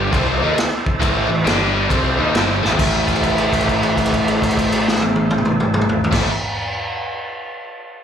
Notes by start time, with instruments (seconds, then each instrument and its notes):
Already playing: overdriven electric guitar G2 D3 G3, tonewheel organ D4 G4 D5
0.12 picked electric bass C2, overdriven electric guitar C3 G3 C4, tonewheel organ E4 A4 C5, kick, crash
0.40 picked electric bass D#2, overdriven electric guitar D#3 A#3 D#4, tonewheel organ E4 A4 B4
0.56 tonewheel organ E4 A4 C5, snare, crash
0.84 tonewheel organ E4 A4 C5, kick
0.99 picked electric bass A1, overdriven electric guitar A2 E3 A3, tonewheel organ E4 A4 C5, kick, crash
1.29 picked electric bass A1, overdriven electric guitar A2 E3, tonewheel organ E4 A4 B4
1.44 picked electric bass G1, overdriven electric guitar G2 D3 G3, tonewheel organ D4 G4 D5, snare, crash
1.74 tonewheel organ D4 G4 D5
1.89 picked electric bass C2, overdriven electric guitar C3 G3 C4, tonewheel organ E4 A4 C5, kick, crash
2.17 picked electric bass D#2, overdriven electric guitar D#3 A#3 D#4, tonewheel organ E4 A4 C5 E5
2.33 picked electric bass G1, overdriven electric guitar G2 D3 G3, tonewheel organ E4 A4 C5 G5, snare, crash
2.62 picked electric bass A1, overdriven electric guitar A2 E3 A3, tonewheel organ E4 A4 C5 A5, snare
2.71 floor tom
2.77 picked electric bass A1, overdriven electric guitar A2 E3, tonewheel organ E4 A4 C5, kick, crash
2.81 overdriven electric guitar A3
3.08 kick, crash
3.16 crash
3.23 kick, crash
3.38 crash
3.53 kick, crash
3.60 crash
3.68 kick, crash
3.83 crash
3.97 kick, crash
4.06 crash
4.13 kick, crash
4.28 crash
4.42 kick, crash
4.51 crash
4.57 kick, crash
4.72 crash
4.88 snare
4.95 snare
5.02 high tom
5.16 high tom
5.31 high tom
5.38 mid tom
5.45 mid tom
5.60 mid tom
5.74 mid tom
5.81 mid tom
5.89 floor tom
6.04 floor tom
6.11 picked electric bass A1, overdriven electric guitar A2 E3 A3, tonewheel organ E4 A4 C5, kick, snare, crash